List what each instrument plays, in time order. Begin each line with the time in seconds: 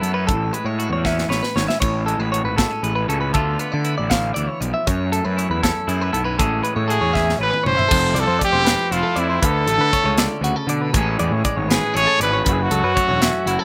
Already playing: clean electric guitar F#2 A3 E4
0.01 picked electric bass F#2, clean electric guitar B3 A4, closed hi-hat
0.14 clean electric guitar C#4 B4
0.27 picked electric bass A1, clean electric guitar A2 A4, kick, closed hi-hat
0.53 clean electric guitar G#3 B4, closed hi-hat
0.65 picked electric bass A2, clean electric guitar C#5
0.79 clean electric guitar F#4 A4, closed hi-hat
0.90 picked electric bass E2, clean electric guitar C#5
1.04 clean electric guitar C#4 E5, kick, snare
1.18 snare
1.29 picked electric bass A1, clean electric guitar B4 C#5, snare
1.43 clean electric guitar B4, snare
1.56 picked electric bass G#1, clean electric guitar C#4 C#5, snare
1.68 clean electric guitar E5, snare
1.80 picked electric bass A1, clean electric guitar A2 C#5, kick, closed hi-hat, splash
2.06 clean electric guitar G#3 A4, closed hi-hat
2.19 picked electric bass A1, clean electric guitar B4
2.32 clean electric guitar F#4 C#5, closed hi-hat
2.44 picked electric bass G#1, clean electric guitar B4
2.56 clean electric guitar B3 A4, kick, snare, closed hi-hat
2.71 clean electric guitar C#4
2.83 picked electric bass A1, clean electric guitar G#4 B4, closed hi-hat
2.95 clean electric guitar B4
3.08 picked electric bass C#2, clean electric guitar C#4 A4, closed hi-hat
3.21 clean electric guitar B4
3.33 picked electric bass D2, clean electric guitar D3 A3 B3 F4 A4, kick, closed hi-hat
3.59 clean electric guitar B3 B4, closed hi-hat
3.72 picked electric bass D3, clean electric guitar D5
3.84 clean electric guitar E4 B4, closed hi-hat
3.98 picked electric bass A1, clean electric guitar D5
4.09 clean electric guitar D3 F5, kick, snare, closed hi-hat
4.34 picked electric bass D2, clean electric guitar E3 D5, closed hi-hat
4.47 clean electric guitar C#5
4.61 picked electric bass B1, clean electric guitar F3 D5, closed hi-hat
4.74 clean electric guitar E5
4.87 clean electric guitar F#2 C#5, picked electric bass F#2, kick, closed hi-hat
5.12 clean electric guitar A3 A4, closed hi-hat
5.25 picked electric bass F#2, clean electric guitar B4
5.37 clean electric guitar E4 C#5, closed hi-hat
5.50 picked electric bass E2, clean electric guitar B4
5.63 clean electric guitar C#4 A4, kick, snare, closed hi-hat
5.87 picked electric bass F#2, clean electric guitar E4 G#4, closed hi-hat
6.01 clean electric guitar B4
6.12 picked electric bass B1, clean electric guitar B3 A4, closed hi-hat
6.24 clean electric guitar C#4 B4
6.38 picked electric bass A1, clean electric guitar A2 E3 G#3 C#4 G#4 A4, kick, closed hi-hat
6.62 clean electric guitar G#3 B4, closed hi-hat
6.76 picked electric bass A2, clean electric guitar C#5
6.88 clean electric guitar F#4 A4, trumpet G#4, closed hi-hat
7.01 picked electric bass E2, clean electric guitar C#5
7.13 clean electric guitar C#4 E5, kick, snare
7.29 snare
7.38 picked electric bass A1, clean electric guitar B4 C#5
7.43 trumpet B4
7.50 clean electric guitar B4, mid tom
7.63 picked electric bass F#1, clean electric guitar C#4 C#5, trumpet C5, mid tom
7.77 clean electric guitar E5, floor tom
7.88 picked electric bass F1, clean electric guitar F2 A4, kick, crash
8.14 picked electric bass C2, clean electric guitar F3 D5, closed hi-hat
8.20 trumpet A4
8.27 picked electric bass F2, clean electric guitar C5
8.39 clean electric guitar A3 D5, kick, closed hi-hat
8.44 trumpet G4
8.53 picked electric bass E1, clean electric guitar C5
8.65 clean electric guitar C4 B4, snare, closed hi-hat
8.91 picked electric bass F1, clean electric guitar E4 C5, trumpet F4, closed hi-hat
9.03 clean electric guitar A4
9.16 picked electric bass F2, clean electric guitar C4 D5, trumpet E4, closed hi-hat
9.30 clean electric guitar C5
9.42 picked electric bass D2, clean electric guitar D3 B4, trumpet A4, kick, closed hi-hat
9.67 picked electric bass A1, clean electric guitar A3 A4, closed hi-hat
9.78 picked electric bass D3, clean electric guitar B4
9.92 clean electric guitar B3 C#5, kick, closed hi-hat
10.04 picked electric bass C#2, clean electric guitar C#4 C#5
10.18 clean electric guitar D3 D5, snare, closed hi-hat
10.41 picked electric bass D2, clean electric guitar C#3 F#4, closed hi-hat
10.56 clean electric guitar A4
10.67 clean electric guitar B2 D5, picked electric bass D3, closed hi-hat
10.81 clean electric guitar B4
10.93 picked electric bass A1, clean electric guitar A2 E3 G#3 A4, kick, closed hi-hat
10.97 clean electric guitar C#4 G#4
11.19 picked electric bass E2, clean electric guitar E3 D5, closed hi-hat
11.31 picked electric bass A2, clean electric guitar C#5
11.45 clean electric guitar G#3 D5, kick, closed hi-hat
11.56 picked electric bass G#1, clean electric guitar C#5
11.69 clean electric guitar C#4 B4, trumpet G#4, snare, closed hi-hat
11.94 picked electric bass A1, clean electric guitar G#4 C#5, trumpet C#5, closed hi-hat
12.07 clean electric guitar A4
12.20 picked electric bass G#1, clean electric guitar C#4 D5, trumpet B4, closed hi-hat
12.33 clean electric guitar C#5
12.45 picked electric bass F#1, clean electric guitar F#2 B4, trumpet F#4, kick, closed hi-hat
12.52 trumpet G#4
12.62 trumpet F#4
12.70 picked electric bass C#2, clean electric guitar F#3 A4, closed hi-hat
12.84 picked electric bass F#2, clean electric guitar B4
12.96 clean electric guitar A3 C#5, kick, closed hi-hat
13.09 picked electric bass E1, clean electric guitar C#5
13.21 clean electric guitar C#4 E5, snare, closed hi-hat
13.46 picked electric bass F#1, clean electric guitar E4 F#4, closed hi-hat
13.59 clean electric guitar A4